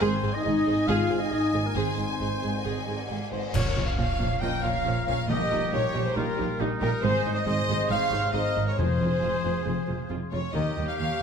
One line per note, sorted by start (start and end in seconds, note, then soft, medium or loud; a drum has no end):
0.00 0.10 G#1 medium
0.00 0.09 G#2 medium
0.00 0.86 G#2 medium
0.00 0.33 C4 medium
0.00 0.21 G#4 medium
0.00 0.35 C5 medium
0.00 0.33 C5 medium
0.00 0.36 C5 loud
0.00 0.41 D#5 medium
0.00 3.31 G#5 medium
0.12 0.97 D#3 medium
0.22 0.31 G#1 medium
0.22 0.30 G#2 medium
0.22 1.09 D#4 medium
0.22 0.31 G#4 medium
0.22 0.31 C5 medium
0.32 0.45 D#4 loud
0.32 0.75 G#4 medium
0.32 0.42 D#5 medium
0.32 0.44 D#5 medium
0.32 0.45 D#5 loud
0.43 0.54 G#1 medium
0.43 0.52 G#2 medium
0.43 0.88 D#4 loud
0.43 0.52 G#4 medium
0.43 0.64 D#5 medium
0.43 0.89 D#5 loud
0.43 0.87 D#5 medium
0.43 0.53 D#5 medium
0.43 0.89 D#5 medium
0.54 1.42 G#5 medium
0.65 0.75 G#1 medium
0.65 0.74 G#2 medium
0.65 0.74 G#4 medium
0.65 0.75 C5 medium
0.65 1.30 D#5 medium
0.76 1.19 G#4 medium
0.86 0.97 G#1 loud
0.86 0.94 G#2 medium
0.86 1.75 G#2 medium
0.86 1.21 F4 loud
0.86 1.08 G#4 medium
0.86 1.08 G#4 loud
0.86 1.19 F5 loud
0.86 1.20 F5 loud
0.98 1.86 D#3 medium
1.09 1.18 G#1 medium
1.09 1.17 G#2 medium
1.09 1.98 D#4 medium
1.09 1.18 G#4 medium
1.09 1.18 C5 medium
1.19 1.31 D#4 medium
1.19 1.64 G#4 medium
1.19 1.31 D#5 medium
1.31 1.40 G#1 medium
1.31 1.39 G#2 medium
1.31 1.65 D#4 loud
1.31 1.39 G#4 medium
1.31 1.66 D#5 medium
1.31 1.52 D#5 medium
1.31 1.40 D#5 medium
1.31 1.64 D#5 medium
1.31 1.68 D#5 medium
1.43 2.31 G#5 medium
1.52 1.61 G#1 medium
1.52 1.62 G#2 medium
1.52 1.62 G#4 medium
1.52 1.60 C5 medium
1.52 2.20 D#5 medium
1.64 1.77 A#3 medium
1.64 2.09 G#4 medium
1.64 1.76 A#4 medium
1.64 1.70 A#4 medium
1.64 1.77 A#4 medium
1.75 1.83 G#1 medium
1.75 1.84 G#2 medium
1.75 2.65 G#2 medium
1.75 3.10 C4 medium
1.75 1.96 G#4 medium
1.75 3.07 C5 medium
1.87 2.76 D#3 soft
1.96 2.05 G#1 soft
1.96 2.06 G#2 medium
1.96 2.87 D#4 soft
1.96 2.06 G#4 soft
1.96 2.04 C5 soft
2.10 2.54 G#4 medium
2.19 2.28 G#1 medium
2.19 2.28 G#2 soft
2.19 2.29 G#4 soft
2.19 2.51 C5 medium
2.19 2.27 D#5 soft
2.19 2.42 D#5 soft
2.33 3.20 G#5 soft
2.42 2.51 G#1 soft
2.42 2.51 G#2 soft
2.42 2.51 G#4 soft
2.42 2.50 C5 soft
2.42 3.09 D#5 soft
2.54 2.98 G#4 soft
2.54 2.64 D#5 medium
2.64 2.73 G#1 medium
2.64 2.72 G#2 medium
2.64 3.56 G#2 soft
2.64 2.85 G#4 soft
2.64 2.85 G#4 medium
2.64 3.08 D#5 medium
2.77 3.56 D#3 soft
2.86 2.95 G#1 soft
2.86 2.95 G#2 soft
2.86 3.56 D#4 soft
2.86 2.96 G#4 soft
2.86 2.94 C5 soft
3.00 3.42 G#4 soft
3.09 3.18 G#1 soft
3.09 3.18 G#2 soft
3.09 3.17 G#4 soft
3.09 3.18 D#5 soft
3.09 3.31 D#5 soft
3.09 3.31 F5 medium
3.21 3.56 G#5 soft
3.31 3.40 G#1 soft
3.31 3.40 G#2 soft
3.31 3.39 G#4 soft
3.31 3.52 G#4 medium
3.31 3.38 C5 medium
3.31 3.40 C5 soft
3.31 3.42 C5 medium
3.31 3.52 C5 medium
3.31 3.53 D#5 medium
3.31 3.56 D#5 soft
3.44 3.56 G#4 soft
3.54 3.62 A#1 medium
3.54 3.62 A#2 medium
3.54 4.42 A#2 medium
3.54 3.63 F3 medium
3.54 5.26 C#4 medium
3.54 3.63 C#4 medium
3.54 5.25 F4 medium
3.54 3.87 A#4 medium
3.54 3.86 C#5 medium
3.54 3.86 C#5 loud
3.54 concert bass drum medium
3.54 crash medium
3.66 4.52 F3 medium
3.76 3.85 A#1 medium
3.76 3.85 A#2 medium
3.76 3.85 F3 medium
3.76 4.63 C#4 medium
3.76 3.85 C#4 medium
3.86 4.31 A#4 medium
3.86 3.97 C#5 medium
3.86 3.91 F5 medium
3.86 3.97 F5 medium
3.97 4.07 A#1 medium
3.97 4.05 A#2 medium
3.97 4.06 F3 medium
3.97 4.06 C#4 medium
3.97 4.41 C#5 medium
3.97 4.19 C#5 medium
3.97 4.40 F5 medium
3.97 4.41 F5 medium
4.10 4.95 F5 medium
4.19 4.27 A#1 medium
4.19 4.28 A#2 medium
4.19 4.28 F3 medium
4.19 4.28 C#4 medium
4.19 4.84 C#5 medium
4.32 4.73 A#4 medium
4.41 4.49 A#1 medium
4.41 4.49 A#2 medium
4.41 5.28 A#2 medium
4.41 4.51 F3 medium
4.41 4.51 C#4 medium
4.41 5.25 A#4 medium
4.41 4.62 D#5 medium
4.41 4.63 G5 loud
4.41 4.63 G5 medium
4.41 4.47 G5 medium
4.53 5.31 F3 soft
4.62 4.72 A#1 medium
4.62 4.71 A#2 medium
4.62 4.72 F3 medium
4.62 5.31 C#4 medium
4.62 4.73 C#4 medium
4.62 5.06 C#5 medium
4.62 5.03 F5 medium
4.62 5.06 F5 loud
4.62 5.06 F5 medium
4.75 5.16 A#4 medium
4.84 4.94 A#1 medium
4.84 4.92 A#2 medium
4.84 4.95 F3 medium
4.84 4.95 C#4 medium
4.84 5.05 C#5 medium
5.05 5.16 A#1 medium
5.05 5.15 A#2 medium
5.05 5.16 F3 medium
5.05 5.16 C#4 medium
5.05 5.30 C#5 medium
5.05 5.29 C#5 medium
5.05 5.11 F5 medium
5.05 5.29 F5 medium
5.05 5.17 F5 medium
5.17 5.60 A#4 medium
5.28 5.38 A#1 medium
5.28 5.36 A#2 medium
5.28 6.14 A#2 medium
5.28 5.91 A#2 medium
5.28 5.38 G3 medium
5.28 7.00 A#3 medium
5.28 5.38 D#4 medium
5.28 7.00 G4 medium
5.28 6.15 G4 loud
5.28 5.69 A#4 medium
5.28 5.71 D#5 medium
5.28 5.72 D#5 loud
5.40 6.26 G3 medium
5.51 5.60 A#1 medium
5.51 5.59 A#2 medium
5.51 5.60 G3 medium
5.51 6.36 D#4 medium
5.51 5.60 D#4 medium
5.61 6.03 A#4 medium
5.70 5.82 A#1 medium
5.70 5.81 A#2 medium
5.70 5.81 G3 medium
5.70 5.81 D#4 medium
5.70 6.03 A#4 medium
5.70 6.04 C#5 medium
5.70 6.05 C#5 medium
5.84 6.69 G5 medium
5.93 6.03 A#1 medium
5.93 6.03 A#2 medium
5.93 6.01 G3 medium
5.93 6.02 D#4 medium
5.93 6.59 D#5 medium
6.03 6.15 G#4 medium
6.03 6.47 A#4 medium
6.03 6.15 C5 medium
6.03 6.16 C5 medium
6.15 6.25 A#1 medium
6.15 7.04 A#2 medium
6.15 6.24 A#2 medium
6.15 6.24 G3 medium
6.15 6.24 D#4 medium
6.15 6.62 F4 medium
6.15 6.59 G4 medium
6.15 6.59 A#4 medium
6.15 6.60 A#4 medium
6.27 7.05 G3 medium
6.37 6.47 A#1 medium
6.37 6.46 A#2 medium
6.37 6.46 G3 medium
6.37 7.23 D#4 medium
6.37 6.46 D#4 medium
6.48 6.91 A#4 medium
6.60 6.68 A#1 medium
6.60 6.68 A#2 medium
6.60 6.68 G3 medium
6.60 7.46 D#4 medium
6.60 6.69 D#4 medium
6.60 6.81 D#5 medium
6.71 7.05 G5 medium
6.80 6.89 A#1 medium
6.80 6.90 A#2 medium
6.80 6.90 G3 medium
6.80 6.90 D#4 medium
6.80 6.89 G4 medium
6.80 7.01 A#4 medium
6.80 6.91 A#4 loud
6.80 7.02 A#4 medium
6.80 7.45 D#5 medium
7.02 7.11 G#1 medium
7.02 7.90 G#2 medium
7.02 7.11 G#2 medium
7.02 7.12 G#3 medium
7.02 7.44 C4 medium
7.02 7.12 D#4 medium
7.02 7.35 G#4 loud
7.02 7.44 G#4 medium
7.02 7.35 C5 loud
7.02 7.36 C5 medium
7.13 8.00 D#3 medium
7.24 7.34 G#1 medium
7.24 7.34 G#2 medium
7.24 7.33 G#3 medium
7.24 8.11 D#4 medium
7.24 7.33 D#4 medium
7.34 7.43 C5 medium
7.34 7.45 D#5 medium
7.34 7.45 D#5 loud
7.34 7.44 D#5 medium
7.44 7.55 G#1 medium
7.44 7.54 G#2 medium
7.44 8.32 C3 medium
7.44 7.55 G#3 medium
7.44 7.55 D#4 medium
7.44 8.32 G#4 medium
7.44 7.88 C5 medium
7.44 8.36 C5 medium
7.44 7.89 D#5 loud
7.44 7.89 D#5 medium
7.44 7.67 D#5 medium
7.58 8.44 G#5 medium
7.68 7.77 G#1 medium
7.68 7.76 G#2 medium
7.68 7.78 G#3 medium
7.68 7.78 D#4 medium
7.89 7.98 G#1 medium
7.89 7.98 G#2 medium
7.89 8.80 G#2 medium
7.89 7.99 G#3 medium
7.89 7.99 D#4 medium
7.89 8.33 C#5 medium
7.89 8.33 F5 medium
7.89 8.33 F5 loud
8.01 8.80 D#3 medium
8.11 8.20 G#1 medium
8.11 8.19 G#2 medium
8.11 8.20 G#3 medium
8.11 8.80 D#4 medium
8.11 8.20 D#4 medium
8.25 8.67 C5 medium
8.33 8.42 G#1 medium
8.33 8.41 G#2 medium
8.33 8.42 G#3 medium
8.33 8.77 C4 medium
8.33 8.42 D#4 medium
8.33 8.76 G#4 medium
8.33 8.78 A#4 medium
8.33 8.66 C5 medium
8.33 8.66 D#5 medium
8.33 8.56 D#5 medium
8.46 9.22 G#5 medium
8.56 8.65 G#1 medium
8.56 8.64 G#2 medium
8.56 8.65 G#3 medium
8.56 8.64 D#4 medium
8.56 8.80 D#5 medium
8.66 8.78 A#4 medium
8.66 10.57 C5 medium
8.66 8.78 C#5 medium
8.77 8.86 F1 medium
8.77 8.86 F2 medium
8.77 9.40 F2 medium
8.77 9.64 F3 medium
8.77 8.87 G#3 medium
8.77 10.29 C4 medium
8.77 8.87 F4 medium
8.77 10.29 G#4 medium
8.77 10.10 G#4 medium
8.77 10.30 G#4 medium
8.77 10.07 C5 medium
8.77 10.10 C5 medium
8.77 10.08 C5 medium
8.89 9.76 C4 soft
9.00 9.08 F1 medium
9.00 9.09 F2 medium
9.00 9.08 G#3 soft
9.00 9.09 F4 medium
9.00 9.87 G#4 soft
9.12 9.55 F5 medium
9.22 9.30 F1 medium
9.22 9.30 F2 medium
9.22 9.31 G#3 medium
9.22 9.31 F4 medium
9.22 9.43 G#5 medium
9.34 10.21 C6 soft
9.43 9.52 F1 medium
9.43 9.51 F2 soft
9.43 9.52 G#3 soft
9.43 9.52 F4 soft
9.43 10.10 G#5 soft
9.56 9.99 F5 soft
9.65 9.75 F1 medium
9.65 9.73 F2 medium
9.65 10.56 F3 soft
9.65 9.74 G#3 soft
9.65 9.75 F4 medium
9.78 10.56 C4 soft
9.87 9.97 F1 soft
9.87 9.95 F2 soft
9.87 9.96 G#3 soft
9.87 9.96 F4 soft
9.87 10.56 G#4 soft
10.00 10.43 F5 soft
10.09 10.19 F1 medium
10.09 10.17 F2 soft
10.09 10.19 G#3 medium
10.09 10.19 F4 medium
10.09 10.31 G#5 soft
10.22 10.57 C6 soft
10.32 10.41 F1 medium
10.32 10.40 F2 medium
10.32 10.40 G#3 soft
10.32 10.41 F4 soft
10.32 10.40 A#4 medium
10.32 10.53 C#5 medium
10.32 10.38 C#5 medium
10.32 10.53 C#5 medium
10.32 10.56 G#5 soft
10.44 10.57 F5 soft
10.53 10.62 D#2 medium
10.53 10.63 D#2 medium
10.53 10.74 D#3 medium
10.53 11.22 D#3 medium
10.53 11.22 A#3 medium
10.53 11.22 G4 medium
10.53 10.86 A#4 medium
10.53 10.87 D#5 medium
10.53 10.88 D#5 medium
10.66 11.22 D#4 soft
10.77 10.85 D#2 medium
10.77 10.85 D#2 soft
10.77 10.86 G3 soft
10.77 11.22 G4 soft
10.87 11.22 A#4 medium
10.87 10.92 C#5 medium
10.87 10.96 F5 medium
10.87 10.98 F5 medium
10.87 10.97 F5 medium
10.97 11.07 D#2 soft
10.97 11.07 D#2 medium
10.97 11.08 A#3 medium
10.97 11.22 C#5 medium
10.97 11.22 F5 medium
10.97 11.19 G5 medium
11.09 11.22 A#5 medium